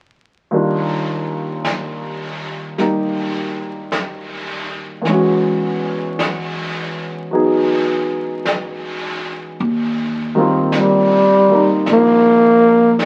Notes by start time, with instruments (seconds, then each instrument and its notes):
0.51 grand piano D#2 D#3 G3 D4, brush sweep
0.56 grand piano F4
1.65 brush sweep, snare, hi-hat pedal
2.78 grand piano G3 A#3 D#4 G4, brush sweep, snare
3.92 brush sweep, snare, hi-hat pedal
5.01 grand piano E2 E3, brush sweep, snare
5.07 grand piano G#3 C#4
5.13 grand piano F#4
6.19 brush sweep, snare, hi-hat pedal
7.31 grand piano F#3 B3 D#4 G#4, brush sweep
8.45 brush sweep, snare, hi-hat pedal
9.58 upright bass D#2, brush sweep
10.35 grand piano D#3 G3 A#3 C4
10.40 grand piano F4
10.72 brush sweep, snare, hi-hat pedal
10.76 tenor saxophone G3
11.50 grand piano G3 A#3 D#4, muted upright bass stroke
11.86 upright bass A#1, brush sweep, snare
11.92 tenor saxophone A#3
12.99 brush sweep, snare, hi-hat pedal